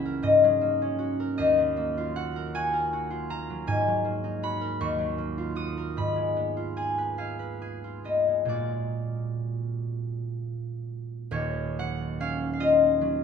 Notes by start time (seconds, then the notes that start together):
Already playing: C#2 E3 G#3 A#3 C#4 E4 G#4 E5 F#5 G#5 A#5
0.05 A#4
0.22 G#2 D#5
0.44 F#3
0.61 A#3
0.82 C#4
0.99 F#4
1.20 A#4
1.38 D#2 D#5
1.59 F#3
1.77 A#3
1.98 F4
2.16 F#4 F#5
2.36 A#4
2.55 F#4 G#5
2.73 A#4
2.93 F#4
3.10 F4
3.30 A#3 A#5
3.50 F#3
3.67 G#2 G#5
3.88 F#3
4.05 A#3
4.24 D#4
4.43 F#4 B5
4.61 A#4
4.81 D#2 C#6
4.98 F#3
5.18 A#3
5.38 F4
5.56 F#4 D#6
5.78 A#4
5.97 G#2 B5
6.16 G#3
6.36 B3
6.57 F4
6.77 G#4 G#5
6.98 B4
7.18 G#4 F5
7.39 B4
7.62 G#4
7.84 F4
8.04 B3 D#5
8.28 G#3
8.45 A#2 G#3 A#3 F#4 D5
11.31 D#1 D#2 C#5
11.79 F#3 F#5
12.20 C#4 F5
12.53 F5
12.60 F4 D#5
13.01 F#3